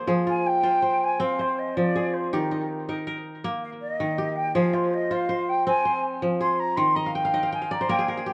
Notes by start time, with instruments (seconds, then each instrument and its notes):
Already playing: kora D#3 A#3 D#4 F4 A#4 C5
0.07 kora F3 G#4
0.27 kora F4, flute G#5
0.46 flute G5
0.63 kora F4 C5
0.82 kora C5
1.03 flute G#5
1.20 kora C4, flute F5
1.39 kora C5, flute C5
1.59 flute D#5
1.75 kora F3, flute D5
1.95 kora G#4
2.13 flute C5
2.32 kora D#3 G4, flute A#4
2.51 kora D#4
2.89 kora D#4 A#4
3.07 kora A#4
3.44 kora A#3
3.63 flute F5
3.81 flute D#5
4.00 kora D#3
4.18 kora G4
4.36 flute G5
4.55 kora F3 G#4, flute F5
4.73 kora F4, flute C5
4.94 flute D#5
5.11 kora F4 C5, flute F5
5.29 kora C5
5.49 flute G5
5.67 kora C4, flute G#5
5.85 kora C5
6.22 kora F3
6.41 kora G#4, flute C6
6.59 flute A#5
6.76 kora D#3, flute C6
6.95 kora D#5, flute A#5
7.06 kora F5
7.14 flute G5, kora G5
7.25 kora F5
7.34 kora D#4 D#5
7.43 kora F5
7.52 kora G5, flute G#5
7.62 kora F5
7.71 kora D5, flute A#5
7.81 kora C5
7.89 kora A#3 A#4, flute G5
7.99 kora G#4
8.08 kora A#4, flute F5
8.17 kora G#4
8.26 kora G4, flute G5